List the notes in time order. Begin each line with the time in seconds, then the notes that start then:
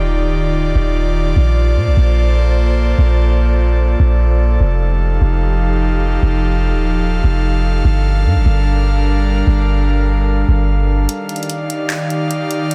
Already playing: D#1 D#3 D#4 F4 G4 D5
0.25 D1
0.75 D#1
1.36 A#1 A#3 A4 C5
1.76 A#2
1.87 A#1
1.97 A#1
2.98 A#1
4.00 A#1
4.60 F1 F3 D#4 G4 F5
5.21 F1
6.22 F1
6.73 D#1
7.24 F1
7.85 G1 G3 D4 A#4
8.25 G2
8.35 G1
8.45 G1
9.47 G1
10.48 G1
11.09 D#3 D#4 G4 D5 F5, closed hi-hat
11.29 closed hi-hat
11.36 closed hi-hat
11.43 closed hi-hat
11.50 closed hi-hat
11.70 closed hi-hat
11.90 clap, closed hi-hat
12.10 closed hi-hat
12.31 closed hi-hat
12.51 closed hi-hat
12.71 closed hi-hat